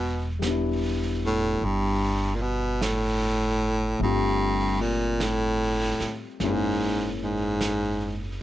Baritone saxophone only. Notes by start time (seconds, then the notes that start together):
Already playing: B2
1.26 A2
1.65 G2
2.35 A#2
2.42 B2
2.82 A2
4.03 G2
4.81 A#2
5.23 A2
6.43 G#2
7.23 G#2